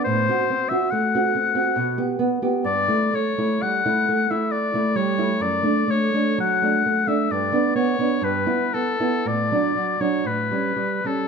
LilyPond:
<<
  \new Staff \with { instrumentName = "Oboe" } { \time 3/4 \key d \major \tempo 4 = 65 c''8. e''16 fis''4. r8 | d''8 cis''8 fis''8. e''16 d''8 cis''8 | d''8 cis''8 fis''8. e''16 d''8 cis''8 | b'8 a'8 d''8. cis''16 b'8. a'16 | }
  \new Staff \with { instrumentName = "Nylon-string guitar" } { \time 3/4 \key d \major a,16 <c' fis'>16 c'16 <c' fis'>16 a16 <c' fis'>16 c'16 <c' fis'>16 b,16 <b g'>16 b16 <b g'>16 | g,16 <a e'>16 a16 <a e'>16 g16 <a e'>16 a16 <a e'>8 <a e'>16 g16 <a e'>16 | fis,16 <a d'>16 a16 <a d'>16 fis16 <a d'>16 a16 <a d'>16 g,16 <b d'>16 b16 <b d'>16 | g,16 <b e'>16 b16 <b e'>16 a,16 <fis d'>16 fis16 <fis d'>16 a,16 <g cis'>16 g16 <g cis'>16 | }
>>